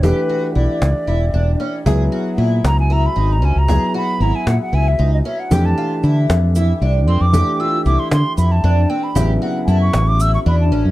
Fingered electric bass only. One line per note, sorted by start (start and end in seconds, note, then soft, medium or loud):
0.00 0.12 E1 medium
0.56 0.66 B1 medium
0.82 0.92 C#2 medium
1.08 1.29 E1 medium
1.34 1.55 E1 medium
1.86 2.07 C#2 medium
2.38 2.59 A#2 medium
2.64 3.07 C#2 medium
3.16 3.43 G#1 medium
3.43 3.53 C#2 medium
3.56 3.77 C#2 medium
4.20 4.31 G#1 medium
4.47 4.57 A#2 medium
4.73 4.94 C#2 medium
4.99 5.21 C#2 medium
5.51 5.73 F2 medium
6.04 6.25 D3 medium
6.29 6.72 F2 medium
6.81 7.08 C2 medium
7.08 7.18 F2 medium
7.21 7.42 F2 medium
7.86 7.96 C2 medium
8.12 8.22 D3 medium
8.38 8.59 F2 medium
8.64 8.85 F2 loud
9.16 9.37 A1 medium
9.68 9.89 F#2 medium
9.94 10.36 A1 loud
10.46 10.72 E2 loud
10.72 10.83 A1 medium
10.85 10.91 F#2 medium